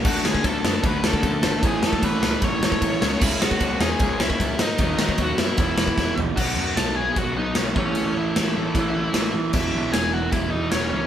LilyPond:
<<
  \new Staff \with { instrumentName = "Lead electric guitar" } { \time 4/4 \key e \major \tempo 4 = 152 <fis' fis''>8 <gis' gis''>8 <a' a''>4 <b' b''>8 <a' a''>4. | <gis' gis''>8 <a' a''>8 <b' b''>4 <cis'' cis'''>8 <cis'' cis'''>4. | <e' e''>8 <fis' fis''>4 <gis' gis''>4 <e' e''>4 <dis' dis''>8~ | <dis' dis''>8 <dis' dis''>8 <fis' fis''>8 <e' e''>2 r8 |
<fis' fis''>4 <a' a''>8 <gis' gis''>8 <fis' fis''>8 <dis' dis''>8 <cis' cis''>8 <cis' cis''>8~ | <cis' cis''>8 <e' e''>2. r8 | <e' e''>4 <gis' gis''>8 <fis' fis''>8 <e' e''>8 <dis' dis''>8 <cis' cis''>8 <cis' cis''>8 | }
  \new Staff \with { instrumentName = "Distorted electric guitar" } { \clef bass \time 4/4 \key e \major <d a d'>1 | <a, e a>2.~ <a, e a>8 <cis gis cis'>8~ | <cis gis cis'>2.~ <cis gis cis'>8 r8 | <b, fis b>2 <e, b, e>2 |
<b, fis b>2~ <b, fis b>8 <b, fis b>8 <b, fis b>8 <a, e a>8~ | <a, e a>2 <a, e a>8 <a, e a>4 r8 | <e, b, e>2~ <e, b, e>8 <e, b, e>8 <e, b, e>4 | }
  \new Staff \with { instrumentName = "Overdriven electric guitar" } { \clef bass \time 4/4 \key e \major <d a d'>2 <d a d'>2 | <a, e a>2 <a, e a>4. <cis gis cis'>8~ | <cis gis cis'>4. <cis gis cis'>2 r8 | <b, fis b>2 <e, b, e>2 |
<b, fis b>2 <b, fis b>4. <a, e a>8~ | <a, e a>4. <a, e a>2 r8 | <e, b, e>2 <e, b, e>2 | }
  \new Staff \with { instrumentName = "Picked electric bass" } { \clef bass \time 4/4 \key e \major d,8 d8 d,8 fis,8 d,8 d,8 d,8 gis,,8 | a,,8 a,8 a,,8 cis,8 a,,8 a,,8 a,,8 cis,8 | cis,8 cis8 cis,8 e,8 cis,8 cis,8 cis,8 gis,8 | dis,8 dis8 dis,8 fis,8 e,,8 e,,8 e,,8 ais,,8 |
b,,8 fis,8 b,,4 b,,8 b,,8 b,,8 a,,8 | a,,8 a,,8 a,,8 a,,8 a,,4 a,,8 a,,8 | e,,8 b,,8 e,,4 e,,8 e,,8 e,,8 cis,8 | }
  \new DrumStaff \with { instrumentName = "Drums" } \drummode { \time 4/4 <cymc bd>8 sn16 bd16 <bd cymr>8 sn8 <bd cymr>8 sn16 bd16 <bd cymr>8 sn8 | <bd cymr>8 sn16 bd16 <bd cymr>8 sn8 <bd cymr>8 sn16 bd16 <bd cymr>8 sn8 | <cymc bd>8 sn16 bd16 <bd cymr>8 sn8 <bd cymr>8 sn16 bd16 <bd cymr>8 sn8 | <bd cymr>8 sn16 bd16 <bd cymr>8 sn8 <bd cymr>8 sn16 bd16 <bd sn>8 tomfh8 |
<cymc bd>4 <cymr sn>4 <bd cymr>4 <cymr sn>8 bd8 | cymr4 <cymr sn>4 <bd cymr>4 <cymr sn>4 | <cymc bd>4 <cymr sn>4 <bd cymr>4 <cymr sn>4 | }
>>